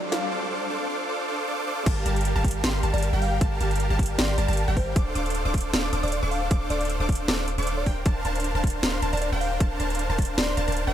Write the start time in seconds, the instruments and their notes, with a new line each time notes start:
Already playing: ambient pad C4 F4 A4 D5, riser
0.03 supersaw synth D4 A4 C5 F5 D6
0.12 fm electric piano F5, snare, closed hi-hat
0.31 supersaw synth D4 A4 C5 F5 D6
0.51 supersaw synth D4 A4 C5 F5 D6
0.70 supersaw synth D4 A4 C5 F5 D6
0.89 supersaw synth D4 A4 C5 F5 D6
1.09 supersaw synth D4 A4 C5 F5 D6
1.28 supersaw synth D4 A4 C5 F5 D6
1.47 supersaw synth D4 A4 C5 F5 D6
1.67 supersaw synth D4 A4 C5 F5 D6
1.86 808-style bass G1, supersaw synth G3 G4 F5, synth pluck A5, kick, closed hi-hat, crash
2.06 808-style bass G1, supersaw synth G3 G4 A#4 F5 A5, synth pluck A5, closed hi-hat
2.16 closed hi-hat
2.21 closed hi-hat
2.25 closed hi-hat
2.35 808-style bass G1, supersaw synth G3 G4 A#4 F5 A5, synth pluck A5
2.44 kick, closed hi-hat
2.48 closed hi-hat
2.51 closed hi-hat
2.63 808-style bass G1, supersaw synth G3 G4 A#4 F5 C6, synth pluck C6, snare, closed hi-hat
2.83 808-style bass G1, supersaw synth G3 G4 A#4 F5 A5, synth pluck A5, closed hi-hat
2.93 808-style bass G1, supersaw synth G3 G4 A#4 F5 A5, fm electric piano D5, synth pluck A5, closed hi-hat
2.98 closed hi-hat
3.02 fm electric piano D5, closed hi-hat
3.13 808-style bass G1, supersaw synth G3 G4 A#4 F5 G5, synth pluck G5
3.22 fm electric piano F5, open hi-hat
3.41 synth pluck A5, supersaw synth A5, kick, closed hi-hat
3.60 808-style bass G1, supersaw synth G3 G4 A#4 F5 A5, synth pluck A5, closed hi-hat
3.71 closed hi-hat
3.76 closed hi-hat
3.80 closed hi-hat
3.90 808-style bass G1, supersaw synth G3 G4 A#4 F5 A5, synth pluck A5
3.99 kick, closed hi-hat
4.03 closed hi-hat
4.06 closed hi-hat
4.18 808-style bass G1, supersaw synth G3 G4 A#4 F5 C6, fm electric piano D5, synth pluck C6, snare, closed hi-hat
4.38 808-style bass G1, supersaw synth G3 G4 A#4 F5 A5, fm electric piano D5, synth pluck A5, closed hi-hat
4.48 808-style bass G1, supersaw synth G3 G4 A#4 F5 A5, synth pluck A5, closed hi-hat
4.53 closed hi-hat
4.57 closed hi-hat
4.68 808-style bass G1, supersaw synth G3 G4 A#4 F5 G5, synth pluck G5
4.77 fm electric piano C5, kick, open hi-hat
4.96 808-style bass D1, supersaw synth D4 A4 C5 F5 D6, synth pluck D6, kick, closed hi-hat
5.15 808-style bass D1, supersaw synth D4 A4 C5 F5 D6, synth pluck D6, closed hi-hat
5.26 closed hi-hat
5.30 closed hi-hat
5.35 closed hi-hat
5.45 808-style bass D1, supersaw synth D4 A4 C5 F5 D6, synth pluck D6
5.54 kick, closed hi-hat
5.58 closed hi-hat
5.61 closed hi-hat
5.73 808-style bass D1, supersaw synth D4 A4 C5 F5 D6, synth pluck D6, snare, closed hi-hat
5.93 808-style bass D1, supersaw synth D4 A4 C5 F5 D6, synth pluck D6, closed hi-hat
6.03 808-style bass D1, supersaw synth D4 A4 C5 F5 D6, fm electric piano D5, synth pluck D6, closed hi-hat
6.08 closed hi-hat
6.12 fm electric piano D5, closed hi-hat
6.23 808-style bass D1, supersaw synth D4 A4 C5 F5 D6, synth pluck D6
6.31 fm electric piano F5, open hi-hat
6.51 808-style bass D1, supersaw synth D4 A4 C5 F5, synth pluck D6, kick, closed hi-hat
6.70 808-style bass D1, supersaw synth D4 A4 C5 F5 D6, fm electric piano D5, synth pluck D6, closed hi-hat
6.81 closed hi-hat
6.85 closed hi-hat
6.90 closed hi-hat
7.00 808-style bass D1, supersaw synth D4 A4 C5 F5 D6, synth pluck D6
7.09 kick, closed hi-hat
7.12 closed hi-hat
7.15 closed hi-hat
7.28 808-style bass D1, supersaw synth D4 A4 C5 F5 D6, synth pluck D6, snare, closed hi-hat
7.48 closed hi-hat
7.58 808-style bass D1, supersaw synth D4 A4 C5 F5 D6, synth pluck D6, closed hi-hat
7.63 closed hi-hat
7.67 closed hi-hat
7.77 fm electric piano D5
7.86 808-style bass D1, supersaw synth D4 A#4 C5 F5 G5, synth pluck G5, kick, open hi-hat
8.06 808-style bass D1, supersaw synth D4 A#4 C5 F5 A5, synth pluck A5, kick, closed hi-hat
8.25 808-style bass D1, supersaw synth D4 A#4 C5 F5 A5, synth pluck A5, closed hi-hat
8.35 closed hi-hat
8.40 closed hi-hat
8.44 closed hi-hat
8.55 808-style bass D1, supersaw synth D4 A#4 C5 F5 A5, synth pluck A5
8.64 kick, closed hi-hat
8.67 closed hi-hat
8.70 closed hi-hat
8.83 808-style bass D1, supersaw synth D4 A#4 C5 F5 C6, synth pluck C6, snare, closed hi-hat
9.02 808-style bass D1, supersaw synth D4 A#4 C5 F5 A5, synth pluck A5, closed hi-hat
9.13 808-style bass D1, supersaw synth D4 A#4 C5 F5 A5, fm electric piano D5, synth pluck A5, closed hi-hat
9.17 closed hi-hat
9.22 fm electric piano D5, closed hi-hat
9.32 808-style bass D1, supersaw synth D4 A#4 C5 F5 G5, synth pluck G5
9.41 fm electric piano F5, open hi-hat
9.60 808-style bass D1, supersaw synth D4 A#4 C5 F5 A5, synth pluck A5, kick, closed hi-hat
9.80 808-style bass D1, supersaw synth D4 A#4 C5 F5 A5, synth pluck A5, closed hi-hat
9.90 closed hi-hat
9.95 closed hi-hat
9.99 closed hi-hat
10.10 808-style bass D1, supersaw synth D4 A#4 C5 F5 A5, synth pluck A5
10.18 kick, closed hi-hat
10.22 closed hi-hat
10.25 closed hi-hat
10.38 808-style bass D1, supersaw synth D4 A#4 C5 F5 C6, fm electric piano D5, synth pluck C6, snare, closed hi-hat
10.57 808-style bass D1, supersaw synth D4 A#4 C5 F5 A5, fm electric piano D5, synth pluck A5, closed hi-hat
10.68 808-style bass D1, supersaw synth D4 A#4 C5 F5 A5, synth pluck A5, closed hi-hat
10.72 closed hi-hat
10.77 closed hi-hat
10.87 808-style bass D1, supersaw synth D4 A#4 C5 F5 G5, synth pluck G5